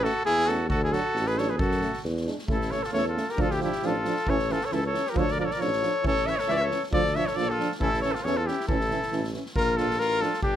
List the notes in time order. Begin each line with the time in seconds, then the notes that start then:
0.01 A3 C#4 F#4 A4, snare
0.25 E2 E4 G#4, snare
0.40 snare
0.46 A3 C#4 F#4 A4, snare
0.69 D2 F#4 A4, kick
0.83 E4 G#4
0.92 F#3 D4 F#4 A4, snare
1.14 A1, snare
1.26 G#4 B4, snare
1.37 F#3 D4 A4 C#5, snare
1.49 G#4 B4
1.58 F#2 F#4 A4, kick
1.71 snare
1.81 A3 C#4, snare
1.94 snare
2.04 E2, snare
2.17 snare
2.26 G#3 D4, snare
2.38 snare
2.48 A1 A3 C#4 E4 A4, kick
2.61 snare
2.70 A3 C#4 A4 C#5, snare
2.83 F4 A4, snare
2.93 E2 A3 C#4 C#5, snare
2.97 A4
3.08 F4 A4
3.15 A3 C#4, snare
3.29 G4 A#4, snare
3.37 D2 F3 D4, kick
3.41 F4 A4
3.51 G4, snare
3.55 E4
3.60 F3 D4 E4 G4, snare
3.72 snare
3.82 A1 F3 D4 F4, snare
3.87 A4
4.03 F3 D4, snare
4.16 snare
4.27 A1 E3 C#4 A4 C#5, kick
4.39 snare
4.49 E3 C#4 F4 A4, snare
4.61 A4, snare
4.65 C#5
4.71 C#2 E3 C#4 E4 A4, snare
4.86 A4 C#5
4.93 E3 C#4, snare
5.07 G4 A#4, snare
5.13 D2 F3 D4 A4, kick
5.18 C#5
5.28 D5, snare
5.32 A#4
5.36 F3 D4 D5
5.41 A4 A#4
5.46 C#5
5.51 A#4 D5, snare
5.56 F3 D4 C#5
5.61 A1 A4, snare
5.73 snare
5.81 F3 D4, snare
6.02 A1 E3 C#4, kick
6.07 A4 C#5
6.17 snare
6.26 E3 C#4 C#5 E5, snare
6.37 A4 C#5, snare
6.47 C#2 E3 C#4 E5, snare
6.51 C#5 D5
6.55 E5
6.62 A4 C#5
6.70 E3 C#4, snare
6.83 snare
6.92 D2 F3 D4 A4 D5, kick
7.06 snare
7.13 F3 D4 C#5 E5, snare
7.26 A4 C#5, snare
7.35 A#1 F3 D4 A4 D5, snare
7.49 F4 A4
7.59 F3 D4, snare
7.72 snare
7.79 A1 E3 C#4 E4 A4, kick
7.94 snare
8.02 E3 C#4 A4 C#5, snare
8.12 F4 A4, snare
8.23 E2 E3 C#4 A4 C#5, snare
8.36 F4 A4
8.46 E3 C#4 E4 G4, snare
8.60 snare
8.68 A1 E3 C#4 E4 A4, kick
8.81 snare
8.91 E3 C#4, snare
9.03 snare
9.12 A1 E3 C#4, snare
9.24 snare
9.33 E3 C#4, snare
9.46 snare
9.56 A#1 F4 A#4, kick
9.77 F3 D4 F4 A4, snare
9.91 snare
9.98 A1 F4 A#4, snare
10.20 F3 D4 F4 A4, snare
10.33 snare
10.42 G1 D4 G4, kick